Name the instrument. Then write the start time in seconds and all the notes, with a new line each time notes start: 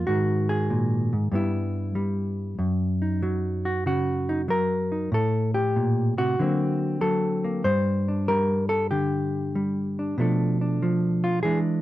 hollow-body jazz guitar
0.07 G#2 D#3 F#4
0.49 G#4
0.70 A#2
1.13 G#2
1.32 G2 G3 B3 E4
1.95 G3
2.59 F#2
3.02 D#4
3.23 F#3
3.65 F#4
3.86 C#3 F#4
4.29 D#4
4.48 F#3 A#4
4.92 D#4
5.12 A2 A4
5.54 G4
5.76 A#2
6.18 C3 F#4
6.39 D3 F#3 A#3 C4
7.01 F#3 A4
7.44 A#3
7.64 G2 G3 C5
8.08 D4
8.28 G3 A#4
8.69 A4
8.91 D3 G4
9.55 G3
9.99 D4
10.18 B2 F3 A3 D4 A4
10.61 D4
10.82 F3
11.24 F4
11.43 E3 G#3 D4 G#4